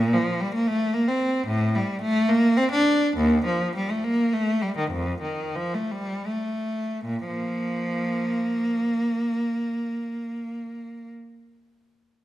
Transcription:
Already playing: A#2
0.13 F3
0.40 G3
0.54 A#3
0.67 A3
0.94 A#3
1.08 C4
1.47 A2
1.75 G3
2.02 A3
2.29 A#3
2.57 C4
2.72 D4
3.17 D#2
3.46 F3
3.75 G3
3.90 A3
4.04 A#3
4.33 A3
4.62 G3
4.78 D#3
4.91 F2
5.22 D#3
5.56 F3
5.74 A3
5.91 G3
6.26 A3
7.05 A#2
7.27 F3 A#3

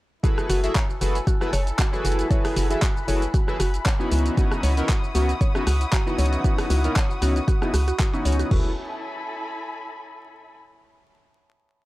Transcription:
0.23 E4 F#4 G#4 A4 B4 G#5 B5 E6, kick, closed hi-hat, shaker
0.38 cross-stick, shaker
0.49 F#1 F#4, open hi-hat, shaker
0.57 A4
0.63 E4 F#4 G#4 A4 E5, closed hi-hat, shaker
0.75 C#5, kick, clap, closed hi-hat, shaker
0.90 shaker
1.01 F#1 E4 F#4 G#4 A4 B4, open hi-hat, shaker
1.15 closed hi-hat, shaker
1.27 F#4, kick, closed hi-hat, shaker
1.41 E4 F#4 G#4 A4 B4, cross-stick, shaker
1.53 F#1 C#5, cross-stick, open hi-hat, shaker
1.60 B5
1.67 closed hi-hat, shaker
1.79 F#4, kick, clap, closed hi-hat, shaker
1.92 E4 F#4 G#4 A4 B4, shaker
2.05 F#1 F#4, open hi-hat, shaker
2.12 closed hi-hat
2.19 closed hi-hat, shaker
2.30 E4 F#4 G#4 A4 B4 C#5 F#6, kick, closed hi-hat, shaker
2.45 cross-stick, open hi-hat, shaker
2.56 F#1 F#4, open hi-hat, shaker
2.70 E4 F#4 G#4 A4 E5, closed hi-hat, shaker
2.82 F#4, kick, clap, closed hi-hat, shaker
2.97 shaker
3.08 F#1 E4 F#4 G#4 A4 B4 C#5, open hi-hat, shaker
3.22 closed hi-hat, shaker
3.34 F#4, kick, closed hi-hat, shaker
3.48 E4 F#4 G#4 A4 B4, cross-stick, shaker
3.60 F#1 F#4, cross-stick, open hi-hat, shaker
3.74 closed hi-hat, shaker
3.86 C#5, kick, clap, closed hi-hat, shaker
3.99 B3 C#4 D#4 E4 F#4, shaker
4.12 C#2 F#4 F#5 C#6 D#6, open hi-hat, shaker
4.19 closed hi-hat
4.26 closed hi-hat, shaker
4.37 B3 C#4 D#4 E4 F#4 D#6, kick, closed hi-hat, shaker
4.51 cross-stick, shaker
4.63 C#2 C#5, open hi-hat, shaker
4.77 B3 C#4 D#4 E4 A#4, closed hi-hat, shaker
4.89 F#4 F#5, kick, clap, closed hi-hat, shaker
5.04 shaker
5.15 C#2 B3 C#4 D#4 E4 F#4, open hi-hat, shaker
5.29 closed hi-hat, shaker
5.41 C#5, kick, closed hi-hat, shaker
5.55 B3 C#4 D#4 E4 F#4, cross-stick, shaker
5.67 C#2 F#4, cross-stick, open hi-hat, shaker
5.81 closed hi-hat, shaker
5.93 F#4, kick, clap, closed hi-hat, shaker
6.06 B3 C#4 D#4 E4 F#4, shaker
6.18 C#2 C#5, open hi-hat, shaker
6.26 closed hi-hat
6.33 closed hi-hat, shaker
6.44 B3 C#4 D#4 E4 F#4, kick, closed hi-hat, shaker
6.58 cross-stick, open hi-hat, shaker
6.70 C#2 F#4, open hi-hat, shaker
6.84 B3 C#4 D#4 E4 A#4, closed hi-hat, shaker
6.96 C#5, kick, clap, closed hi-hat, shaker
7.11 shaker
7.21 C#2 B3 C#4 D#4 E4 F#4, open hi-hat, shaker
7.36 closed hi-hat, shaker
7.48 F#4, kick, closed hi-hat, shaker
7.61 B3 C#4 D#4 E4 F#4, cross-stick, shaker
7.74 C#2 F#4, cross-stick, open hi-hat, shaker
7.88 F#4, closed hi-hat, shaker
7.99 F#4, kick, clap, closed hi-hat, shaker
8.13 B3 C#4 D#4 E4 F#4, shaker
8.25 C#2 C#5, open hi-hat, shaker
8.32 closed hi-hat
8.39 F#4, closed hi-hat, shaker
8.50 F#1 E4 F#4 G#4 A4 B4 C#5 E5 G#5 A5 B5, kick, floor tom, crash
8.60 A4
8.68 G#5
8.75 B5

